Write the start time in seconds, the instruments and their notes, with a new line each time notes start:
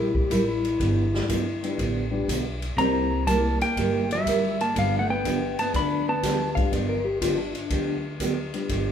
Already playing: upright bass A#1, upright piano G3 A#3 C4 E4 G4, electric slide guitar E4
0.15 electric slide guitar G4, kick
0.30 upright bass A1, steel-string acoustic guitar C3 G3 A#3 E4 G4, electric slide guitar E4, kick, hi-hat pedal, ride
0.48 electric slide guitar E4
0.65 ride
0.79 upright bass G1, steel-string acoustic guitar D3 F3 B3 D4 G4, kick, ride
1.14 snare
1.29 upright bass G1, steel-string acoustic guitar D3 F3 B3 D4 G4, kick, hi-hat pedal, ride
1.62 upright piano G3 B3 D4 F4 G4, ride
1.78 upright bass A1, steel-string acoustic guitar D3 F3 B3 D4 G4, kick, ride
2.10 upright piano G3 B3 D4 F4 G4
2.28 upright bass B1, steel-string acoustic guitar D3 F3 B3 D4 G4, kick, hi-hat pedal, ride
2.62 ride
2.77 upright bass C2, steel-string acoustic guitar C3 G3 A#3 E4 G4, upright piano G3 A#3 C4 E4 G4, hollow-body jazz guitar C4, electric slide guitar A#5, kick, ride
3.26 steel-string acoustic guitar C3 G3 A#3 E4 G4, upright piano G3 A#3 C4 E4 A#4, hollow-body jazz guitar A#3, electric slide guitar A5, kick, hi-hat pedal, ride
3.61 hollow-body jazz guitar A#3, electric slide guitar G5, ride
3.76 upright bass G1, steel-string acoustic guitar C3 G3 A#3 E4 G4, kick, ride
4.11 hollow-body jazz guitar G3, electric slide guitar E5, ride
4.26 steel-string acoustic guitar C3 G3 A#3 E4 G4, kick, hi-hat pedal, ride
4.60 hollow-body jazz guitar A#3, electric slide guitar A5, ride
4.75 upright bass G1, steel-string acoustic guitar D3 F3 B3 D4 G4, hollow-body jazz guitar G3, electric slide guitar F5, kick, ride
4.99 hollow-body jazz guitar A3, electric slide guitar F#5
5.10 hollow-body jazz guitar B3, electric slide guitar G5
5.25 steel-string acoustic guitar D3 F3 B3 D4 G4, kick, hi-hat pedal, ride
5.59 hollow-body jazz guitar B3, electric slide guitar A5, ride
5.74 upright bass D2, steel-string acoustic guitar D3 F3 B3 D4 G4, hollow-body jazz guitar D4, electric slide guitar B5, kick, ride
6.08 hollow-body jazz guitar B3, electric slide guitar A5
6.23 steel-string acoustic guitar D3 F3 B3 D4 G4, kick, snare, hi-hat pedal, ride
6.55 upright piano G3 B3 D4 F4 G4, electric slide guitar F5, kick, ride
6.72 upright bass G1, steel-string acoustic guitar D3 F3 B3 D4 G4, electric slide guitar D5, kick, ride
6.89 electric slide guitar A#4
7.05 electric slide guitar G4
7.21 steel-string acoustic guitar D3 F3 B3 D4 G4, electric slide guitar F4, kick, hi-hat pedal, ride
7.38 electric slide guitar D4
7.54 electric slide guitar D4, ride
7.70 upright bass D2, steel-string acoustic guitar D3 F3 B3 D4 G4, kick, ride
8.20 steel-string acoustic guitar D3 F3 B3 D4 G4, kick, hi-hat pedal, ride
8.53 upright piano G3 B3 D4 F4 G4, ride
8.69 upright bass G1, steel-string acoustic guitar D3 F3 B3 D4 G4, kick, ride